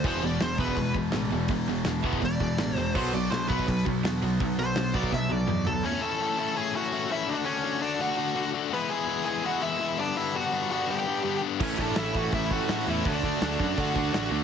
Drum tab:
CC |x---------------|----------------|x---------------|----------------|
HH |----o---o---o---|o---o---o---o---|----o---o---o---|o---o-----------|
SD |----o-------o---|----o-------o---|----o-------o---|----o---o-------|
T1 |----------------|----------------|----------------|----------o-----|
T2 |----------------|----------------|----------------|------------o---|
FT |----------------|----------------|----------------|--------------o-|
BD |o-----ooo-o-----|o-----ooo-o-----|o-----ooo-o-----|o-----ooo-------|

CC |----------------|----------------|----------------|----------------|
HH |----------------|----------------|----------------|----------------|
SD |----------------|----------------|----------------|----------------|
T1 |----------------|----------------|----------------|----------------|
T2 |----------------|----------------|----------------|----------------|
FT |----------------|----------------|----------------|----------------|
BD |----------------|----------------|----------------|----------------|

CC |x---------------|----------------|
HH |----o---o---o---|o---o---o---o---|
SD |----o-------o---|----o-------o---|
T1 |----------------|----------------|
T2 |----------------|----------------|
FT |----------------|----------------|
BD |o-o---o-o-o-----|o-o---o-o-o-----|